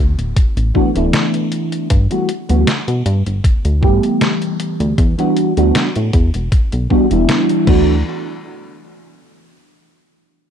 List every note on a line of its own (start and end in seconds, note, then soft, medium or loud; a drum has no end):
0.00 0.15 D2 loud
0.18 0.34 D1 medium
0.18 closed hi-hat soft
0.36 kick loud
0.36 closed hi-hat medium
0.57 0.72 A1 medium
0.57 closed hi-hat soft
0.74 0.90 E3 medium
0.74 0.90 A3 medium
0.74 0.91 B3 medium
0.74 0.91 D4 medium
0.74 0.91 F#4 medium
0.74 kick medium
0.94 1.11 D1 loud
0.94 1.88 E3 medium
0.94 1.88 A3 medium
0.94 1.88 B3 medium
0.94 1.89 D4 medium
0.94 1.89 E4 medium
0.94 closed hi-hat soft
1.13 snare loud
1.13 closed hi-hat loud
1.34 closed hi-hat soft
1.52 closed hi-hat medium
1.72 closed hi-hat soft
1.90 2.08 G2 loud
1.90 kick loud
1.90 closed hi-hat medium
2.10 2.29 E3 medium
2.10 2.29 G3 medium
2.10 2.29 A3 medium
2.10 2.29 B3 medium
2.10 2.30 F#4 medium
2.10 closed hi-hat soft
2.29 closed hi-hat medium
2.49 2.65 D2 medium
2.49 2.67 E3 medium
2.49 2.67 G3 medium
2.49 2.68 A3 medium
2.49 2.68 B3 medium
2.49 2.68 F#4 medium
2.49 closed hi-hat soft
2.67 snare loud
2.67 closed hi-hat medium
2.88 3.03 B2 medium
2.88 closed hi-hat soft
3.06 3.23 G2 loud
3.06 closed hi-hat medium
3.26 3.41 G1 medium
3.26 closed hi-hat soft
3.44 3.61 D2 soft
3.44 kick loud
3.44 closed hi-hat loud
3.65 3.84 D2 medium
3.65 closed hi-hat soft
3.81 4.00 G2 medium
3.81 4.95 E3 medium
3.81 4.96 G3 medium
3.81 4.96 A3 medium
3.81 4.96 B3 medium
3.81 4.97 G4 medium
3.81 kick loud
4.03 closed hi-hat soft
4.21 snare loud
4.21 closed hi-hat loud
4.42 closed hi-hat soft
4.60 closed hi-hat medium
4.80 4.95 D2 loud
4.80 closed hi-hat soft
4.98 5.15 E2 medium
4.98 kick loud
4.98 closed hi-hat medium
5.18 5.52 E3 medium
5.18 5.52 G3 medium
5.18 5.52 B3 medium
5.18 5.52 D4 medium
5.18 5.53 F#4 loud
5.18 closed hi-hat soft
5.37 closed hi-hat medium
5.57 5.72 D2 loud
5.57 5.87 E3 medium
5.57 5.88 G3 medium
5.57 5.88 B3 medium
5.57 5.88 D4 medium
5.57 5.88 F#4 medium
5.57 closed hi-hat soft
5.75 snare loud
5.75 closed hi-hat medium
5.96 6.11 A2 medium
5.96 closed hi-hat soft
6.13 6.31 E2 loud
6.13 kick loud
6.13 closed hi-hat medium
6.34 6.49 E1 medium
6.34 closed hi-hat soft
6.52 kick loud
6.52 closed hi-hat medium
6.72 6.88 B1 medium
6.72 closed hi-hat soft
6.90 7.06 E3 medium
6.90 7.06 G3 medium
6.90 7.06 B3 medium
6.90 7.06 D4 medium
6.90 7.06 F#4 medium
6.90 kick medium
7.09 7.26 E1 loud
7.09 7.64 E3 medium
7.09 7.67 G3 medium
7.09 7.66 B3 medium
7.09 7.67 D4 medium
7.09 7.68 E4 medium
7.09 closed hi-hat soft
7.29 snare loud
7.29 closed hi-hat medium
7.49 closed hi-hat soft
7.65 8.03 D2 loud
7.65 7.95 E3 medium
7.65 7.96 A3 medium
7.65 7.96 B3 medium
7.65 7.97 D4 medium
7.65 kick loud
7.65 crash medium
7.70 7.98 F#4 medium